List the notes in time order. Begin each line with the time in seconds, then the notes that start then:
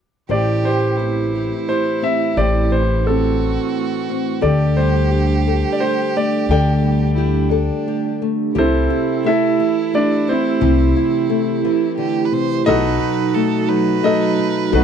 0.29 A1 A2 E4 G4 C5 D5
0.33 G4
0.63 E3 A3 C5
0.67 G4
0.97 C4 E4 G4
1.33 G4
1.68 A3 G4 C5
2.02 C4 E5
2.36 A1 A2 E4 G4 C5 D5
2.70 E3 A3 C5
3.04 C4 F#4 A4
3.09 C4
3.74 A3
4.09 C4
4.41 D2 D3 A3 G4 A4 D5
4.77 G3 A3 C5
5.11 D4 G4
5.46 G4 A4
5.73 D5
5.80 A3 G4 C5
6.15 A3 D4 D5
6.49 D2 D3 A3 G4 A4 D5 G5
6.83 G3 A3
7.15 D4 E4 G4
7.50 D4 G4 A4
7.87 A3 G4
8.21 A3 D4
8.55 C2 C3 C4 E4 G4 A4 C5
8.59 E4
8.73 E4
8.90 E4 G4
9.07 E4
9.24 A3 E4 A4 E5
9.42 G4
9.59 E3 E4
9.76 E4
9.92 A3 G4 D5
9.96 D4
10.10 E4
10.28 A3 C4 E4 C5
10.45 G4
10.61 C2 C3 E4 G4
10.80 E4
10.96 E4 G4
11.13 E4
11.30 A3
11.47 G4
11.65 E3 E4
11.83 E4
11.98 D3 G4
12.17 E4
12.25 B4
12.32 C3 A3 C5
12.51 G4
12.66 B1 B2 F#3 D#4 F#4 A4 B4 D#5
12.85 D#4
13.00 D#4 F#4
13.20 D#4
13.34 A3 A4
13.54 F#4
13.68 F#3 D#4 B4
13.88 D#4
14.03 A3 D#4 F#4 A4 D#5
14.22 D#4
14.39 A3 D#4
14.56 F#4
14.72 B1 B2 F#3 B3 D#4 F#4 A4 B4